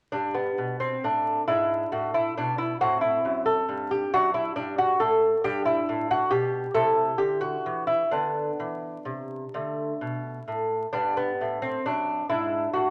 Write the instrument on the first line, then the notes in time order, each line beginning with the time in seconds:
lute
0.12 G2 D4
0.34 B3
0.58 B2
0.80 C4
1.04 A2 D4
1.48 G#2 D4 E4
1.92 A2 F#4
2.14 E4
2.38 B2 D4
2.58 E4
2.81 A2 C4 F#4
3.01 E4
3.25 F#2
3.46 A4
3.69 G2
3.91 G4
4.14 F#2 D4 F#4
4.34 E4
4.56 G2 D4
4.78 F#4
5.00 A2 A4
5.44 G2 D4 G4
5.66 E4
5.89 A2
6.11 F#4
6.31 B2 G4
6.74 C3 E4 A4
7.18 D3 G4
7.41 F#4
7.66 E3
7.87 E4
8.11 D3 B3 D4
8.60 E3
9.05 C3
9.54 D3 A3
10.01 B2
10.48 A2
10.93 G2 B3 D4
11.17 B3
11.41 A2
11.62 C4
11.86 F#2 D4
12.30 G#2 D4 E4
12.73 A2 F#4